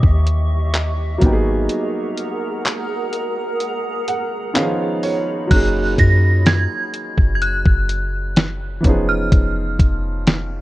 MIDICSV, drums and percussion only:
0, 0, Header, 1, 2, 480
1, 0, Start_track
1, 0, Key_signature, 6, "major"
1, 0, Tempo, 952381
1, 857, Time_signature, 4, 2, 24, 8
1, 5348, End_track
2, 0, Start_track
2, 0, Title_t, "Drums"
2, 16, Note_on_c, 9, 36, 89
2, 66, Note_off_c, 9, 36, 0
2, 134, Note_on_c, 9, 42, 72
2, 185, Note_off_c, 9, 42, 0
2, 373, Note_on_c, 9, 42, 62
2, 376, Note_on_c, 9, 39, 108
2, 423, Note_off_c, 9, 42, 0
2, 426, Note_off_c, 9, 39, 0
2, 613, Note_on_c, 9, 42, 64
2, 615, Note_on_c, 9, 36, 90
2, 663, Note_off_c, 9, 42, 0
2, 666, Note_off_c, 9, 36, 0
2, 854, Note_on_c, 9, 42, 72
2, 905, Note_off_c, 9, 42, 0
2, 1096, Note_on_c, 9, 42, 67
2, 1147, Note_off_c, 9, 42, 0
2, 1336, Note_on_c, 9, 42, 57
2, 1339, Note_on_c, 9, 39, 107
2, 1386, Note_off_c, 9, 42, 0
2, 1389, Note_off_c, 9, 39, 0
2, 1576, Note_on_c, 9, 42, 63
2, 1627, Note_off_c, 9, 42, 0
2, 1817, Note_on_c, 9, 42, 65
2, 1867, Note_off_c, 9, 42, 0
2, 2056, Note_on_c, 9, 42, 74
2, 2107, Note_off_c, 9, 42, 0
2, 2295, Note_on_c, 9, 42, 68
2, 2298, Note_on_c, 9, 39, 105
2, 2346, Note_off_c, 9, 42, 0
2, 2349, Note_off_c, 9, 39, 0
2, 2537, Note_on_c, 9, 46, 71
2, 2587, Note_off_c, 9, 46, 0
2, 2777, Note_on_c, 9, 36, 120
2, 2777, Note_on_c, 9, 42, 75
2, 2777, Note_on_c, 9, 49, 102
2, 2827, Note_off_c, 9, 36, 0
2, 2828, Note_off_c, 9, 42, 0
2, 2828, Note_off_c, 9, 49, 0
2, 3016, Note_on_c, 9, 36, 93
2, 3018, Note_on_c, 9, 42, 68
2, 3067, Note_off_c, 9, 36, 0
2, 3069, Note_off_c, 9, 42, 0
2, 3257, Note_on_c, 9, 42, 64
2, 3260, Note_on_c, 9, 38, 112
2, 3307, Note_off_c, 9, 42, 0
2, 3310, Note_off_c, 9, 38, 0
2, 3497, Note_on_c, 9, 42, 62
2, 3547, Note_off_c, 9, 42, 0
2, 3616, Note_on_c, 9, 36, 91
2, 3667, Note_off_c, 9, 36, 0
2, 3737, Note_on_c, 9, 42, 68
2, 3787, Note_off_c, 9, 42, 0
2, 3857, Note_on_c, 9, 36, 100
2, 3908, Note_off_c, 9, 36, 0
2, 3977, Note_on_c, 9, 42, 72
2, 4027, Note_off_c, 9, 42, 0
2, 4215, Note_on_c, 9, 42, 69
2, 4218, Note_on_c, 9, 38, 117
2, 4266, Note_off_c, 9, 42, 0
2, 4269, Note_off_c, 9, 38, 0
2, 4456, Note_on_c, 9, 42, 70
2, 4457, Note_on_c, 9, 36, 98
2, 4507, Note_off_c, 9, 42, 0
2, 4508, Note_off_c, 9, 36, 0
2, 4697, Note_on_c, 9, 36, 119
2, 4697, Note_on_c, 9, 42, 75
2, 4747, Note_off_c, 9, 36, 0
2, 4747, Note_off_c, 9, 42, 0
2, 4935, Note_on_c, 9, 36, 98
2, 4936, Note_on_c, 9, 42, 72
2, 4986, Note_off_c, 9, 36, 0
2, 4987, Note_off_c, 9, 42, 0
2, 5175, Note_on_c, 9, 42, 62
2, 5178, Note_on_c, 9, 38, 116
2, 5225, Note_off_c, 9, 42, 0
2, 5228, Note_off_c, 9, 38, 0
2, 5348, End_track
0, 0, End_of_file